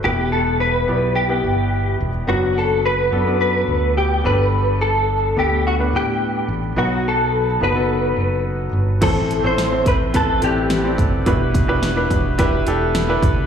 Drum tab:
CC |--------|--------|--------|--------|
HH |--------|--------|--------|--------|
SD |--------|--------|--------|--------|
BD |--------|--------|--------|--------|

CC |x-------|--------|
HH |xxxxxxxx|xxxxxxxx|
SD |--o---o-|--o---o-|
BD |o--oo--o|oo-oo--o|